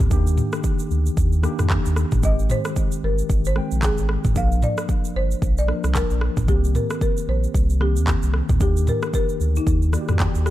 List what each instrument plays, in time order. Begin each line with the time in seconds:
Already playing: tine electric piano D#3 A#3 C4 G4
0.00 kick, mid tom, shaker
0.10 sub bass D#2, tine electric piano D#3 A#3 D4 G4, kick, shaker
0.27 shaker
0.38 mid tom, shaker
0.53 cross-stick, shaker
0.64 kick, shaker
0.79 shaker
0.91 sub bass D2, shaker
1.06 shaker
1.17 sub bass D#2, kick, shaker
1.33 shaker
1.43 tine electric piano D#3 A#3 D4 G4, cross-stick, shaker
1.59 sub bass F2, cross-stick, mid tom, shaker
1.70 kick, cross-stick, clap, shaker
1.86 sub bass D#2, shaker
1.96 cross-stick, shaker
2.12 sub bass G1, kick, mid tom, shaker
2.22 sub bass G#1, tine electric piano D#3 G#3 C4 G4, marimba D#5, kick, shaker
2.39 shaker
2.50 marimba C5, mid tom, shaker
2.65 cross-stick, shaker
2.76 kick, shaker
2.92 shaker
3.03 sub bass G1, marimba A#4
3.18 shaker
3.30 sub bass G#1, kick, shaker
3.45 marimba C5, shaker
3.55 tine electric piano D#3 G#3 C4 G5, cross-stick
3.71 sub bass A#1, shaker
3.83 marimba G#4, kick, cross-stick, clap, shaker
3.98 sub bass G#1, shaker
4.09 cross-stick
4.24 sub bass G#1, kick, mid tom, shaker
4.34 sub bass A#1, tine electric piano F3 A#3 D4 A#4, marimba F5, kick, shaker
4.52 shaker
4.62 marimba D5, mid tom, shaker
4.78 cross-stick, shaker
4.89 kick, shaker
5.05 shaker
5.15 sub bass G1, marimba C5
5.31 shaker
5.42 sub bass A#1, kick, shaker
5.58 marimba D5, shaker
5.67 tine electric piano F3 A#3 D4 A#4, cross-stick
5.84 sub bass C2, cross-stick, shaker
5.95 marimba A#4, kick, cross-stick, clap, shaker
6.10 sub bass A#1, shaker
6.21 cross-stick
6.37 sub bass A#1, kick, mid tom, shaker
6.47 sub bass C2, tine electric piano D#3 A#3 C4 F#4, marimba G4, kick, shaker
6.56 tine electric piano G4
6.64 shaker
6.75 marimba A#4, mid tom, shaker
6.90 cross-stick, shaker
7.01 marimba A#4, kick, shaker
7.17 shaker
7.28 sub bass A#1, marimba C5
7.44 shaker
7.54 sub bass C2, kick, shaker
7.70 shaker
7.80 tine electric piano D#3 A#3 C4 G4, marimba G4, cross-stick
7.96 sub bass D#2, shaker
8.08 kick, cross-stick, clap, shaker
8.23 sub bass C2, shaker
8.34 cross-stick
8.49 sub bass D2, kick, mid tom, shaker
8.59 sub bass D#2, tine electric piano D#3 A#3 D4 G4, marimba G4, kick, shaker
8.77 shaker
8.87 marimba A#4, mid tom, shaker
9.02 cross-stick, shaker
9.14 marimba A#4, kick, shaker
9.29 shaker
9.40 sub bass D2, shaker
9.56 marimba D#4, shaker
9.67 sub bass D#2, kick, shaker
9.82 shaker
9.92 tine electric piano D#3 A#3 F#4 D5, cross-stick, shaker
10.01 tine electric piano G4
10.09 sub bass F2, cross-stick, mid tom, shaker
10.20 tine electric piano G5, kick, cross-stick, clap, shaker
10.35 sub bass D#2, shaker
10.46 marimba G4, cross-stick, shaker